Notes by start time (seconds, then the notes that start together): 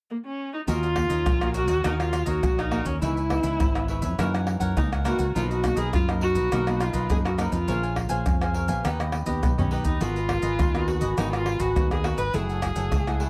0.10 A#3
0.25 C#4
0.54 D#4
0.67 D#2 D#3 A#3 C#4 F4 F#4 A#4 C#5 D#5, pandeiro, maracas, surdo
0.83 A#4 C#5 D#5, pandeiro, maracas
0.95 A#3 C#4, muted cavaquinho stroke, pandeiro, tamborim, surdo
1.09 D#2 A#4 C#5 D#5, pandeiro, maracas
1.26 A#1 A#2, pandeiro, tamborim, maracas, surdo
1.41 A#3 C#4 F#4 A#4 C#5 D#5, pandeiro, tamborim, maracas
1.54 F#4 A#4 C#5 D#5, pandeiro, maracas
1.68 D#2 A#4 C#5 D#5, pandeiro, maracas, surdo
1.84 D#2 D#3 A#3 C#4 D#4 F#4 A#4 C#5 D#5, pandeiro, tamborim, maracas, surdo
1.99 F4 A#4 C#5 D#5, pandeiro, tamborim, maracas
2.13 pandeiro, tamborim, maracas
2.26 D#2 F#4 A#4 C#5 D#5, pandeiro, maracas, surdo
2.43 A#1 A#2 A#3 C#4 F#4, pandeiro, tamborim, maracas, surdo
2.58 D#4 A#4 C#5 D#5, pandeiro, tamborim, maracas, surdo
2.71 A#3 C#4 F#4 A#4 C#5 D#5, pandeiro, tamborim
2.85 D#2 C#4 A#4 C#5 D#5, pandeiro, maracas, surdo
3.01 C#2 C#3 E3 B3 D#4 E4 B4 C#5 E5, pandeiro, maracas, surdo
3.16 B4 C#5 E5, pandeiro, maracas
3.30 E3 B3 D#4, muted cavaquinho stroke, pandeiro, tamborim, surdo
3.43 C#2 B4 C#5 E5, pandeiro, maracas
3.60 G#1 G#2, pandeiro, tamborim, maracas, surdo
3.75 E3 B3 B4 C#5 E5, pandeiro, tamborim, maracas
3.88 E4 B4 C#5 E5, pandeiro
4.02 F2 B4 C#5 E5, pandeiro, maracas, surdo
4.18 F#2 E3 A#3 D#4 E4 A#4 C#5 F#5, pandeiro, tamborim, maracas, surdo
4.34 A#4 C#5 F#5, pandeiro, tamborim, maracas
4.47 pandeiro, tamborim
4.60 F#2 A#4 C#5 F#5, pandeiro, maracas, surdo
4.76 C#2 C#3 E3 A#3 D#4, pandeiro, tamborim, maracas, surdo
4.92 A#4 C#5 F#5, pandeiro, tamborim, maracas, surdo
5.04 E3 A#3 D#4 E4 F#4 A#4 C#5 F#5, pandeiro, tamborim, maracas
5.18 C#2 A#4 C#5 F#5, pandeiro, maracas, surdo
5.35 B1 B2 F3 A#3 D#4 F4 A#4 B4 D#5, pandeiro, maracas, surdo
5.50 F#4 A#4 B4 D#5, pandeiro, maracas
5.63 F3 A#3 D#4, pandeiro, tamborim, maracas, surdo
5.76 B1 G#4 A#4 B4 D#5, pandeiro, maracas
5.93 F#2 F4, pandeiro, tamborim, maracas, surdo
6.08 F3 A#3 D#4 A#4 B4 D#5, pandeiro, tamborim, maracas
6.21 D#4 F#4 A#4 B4 D#5, pandeiro
6.35 B1 A#4 B4 D#5, pandeiro, maracas, surdo
6.51 B1 B2 F3 A#3 D#4 A#4 B4 D#5, pandeiro, tamborim, maracas, surdo
6.66 F3 A#3 D#4 A#4 B4 D#5, pandeiro, tamborim, maracas
6.80 F4, pandeiro, tamborim, maracas
6.93 B1 A#4 B4 D#5, pandeiro, maracas, surdo
7.10 F#2 F3 A#3 D#4 G#4, pandeiro, tamborim, maracas, surdo
7.25 F#4 A#4 B4 D#5, pandeiro, tamborim, maracas, surdo
7.38 F3 A#3 D#4 A#4 B4 D#5, pandeiro, tamborim, maracas
7.51 F2 F4 A#4 B4 D#5, pandeiro, maracas, surdo
7.68 A#1 A#3 C#4 G#4 A#4 C5 C#5 F5 G#5, pandeiro, maracas, surdo
7.83 C#5 F5 G#5, pandeiro, maracas
7.96 pandeiro, tamborim, surdo
8.09 A#1 C#4 G#4 C5 C#5 F5 G#5, pandeiro, maracas
8.26 F2 F3, pandeiro, tamborim, maracas, surdo
8.41 C#4 G#4 C5 C#5 F5 G#5, pandeiro, tamborim, maracas
8.54 A#4 C#5 F5 G#5, pandeiro
8.68 A#1 B3 C#4 G4 C#5 F5 G#5, pandeiro, maracas, surdo
8.85 D#2 D#3 D#4 G4 B4 D#5, pandeiro, tamborim, maracas, surdo
9.00 G4 B4 D#5, pandeiro, tamborim, maracas
9.12 pandeiro, tamborim
9.26 D#2 B3 C#4 G4 B4 D#5, pandeiro, maracas, surdo
9.43 B1 D#3 B3, pandeiro, tamborim, maracas, surdo
9.58 B3 C#4 G4 B4 D#5, surdo, pandeiro, maracas
9.71 D#4 G4 B4 D#5, pandeiro
9.85 D#2 D#4 G4 B4 D#5, pandeiro, maracas, surdo
10.00 G#1 G#3 B3 F4 F#4 G#4 A#4 B4 D#5, pandeiro, maracas, surdo
10.16 G#4 B4 D#5, pandeiro, maracas
10.29 B3 A#4, muted cavaquinho stroke, pandeiro, tamborim, surdo
10.42 G#1 G#4 B4 D#5, pandeiro, maracas
10.59 D#2 D#3, pandeiro, tamborim, maracas, surdo
10.74 B3 F#4 G#4 A#4 B4 D#5, pandeiro, tamborim, maracas
10.88 F#4 G#4 B4 D#5, pandeiro
11.01 G#1 G#4 B4 D#5, pandeiro, maracas, surdo
11.17 G#1 G#3 B3 D#4 F#4 G#4 A#4 B4 D#5, pandeiro, tamborim, maracas, surdo
11.33 F4 G#4 B4 D#5, pandeiro, tamborim, maracas
11.46 pandeiro, tamborim
11.59 G#1 F#4 G#4 B4 D#5, pandeiro, maracas, surdo
11.76 D#2 D#3 B3 F#4 A#4, pandeiro, tamborim, maracas, surdo
11.91 G#4 B4 D#5, pandeiro, tamborim, maracas, surdo
12.04 B3 F#4 G#4 A#4 B4 D#5, pandeiro, tamborim
12.18 G#1 G#4 B4 D#5, pandeiro, maracas, surdo
12.34 F#1 F#3 A3 E4 G#4 A4 C#5 F#5, pandeiro, maracas, surdo
12.49 A4 C#5 F#5, pandeiro, maracas
12.62 A3 E4 G#4, muted cavaquinho stroke, pandeiro, tamborim, maracas, surdo
12.76 F#1 A4 C#5 F#5, pandeiro, maracas
12.92 C#2 C#3, pandeiro, tamborim, maracas, surdo
13.07 A3 E4 G#4 A4 C#5 F#5, pandeiro, tamborim, maracas
13.20 E4 A4 C#5 F#5, pandeiro